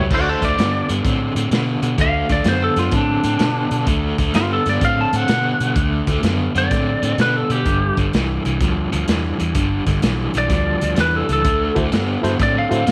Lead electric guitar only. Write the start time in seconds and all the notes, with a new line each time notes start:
0.14 F#4 D5
0.29 A4 C5
0.45 D5
2.01 F5
2.32 D5
2.48 C5
2.64 A4
2.79 F4
2.95 D4
4.36 F4
4.53 A4
4.69 D5
4.85 F5
5.01 A5
5.16 F#5
6.58 D5
7.21 B4
7.36 A4
7.51 G4
10.38 D5
11.01 B4
11.16 A4
11.33 A4
12.43 D5
12.58 F5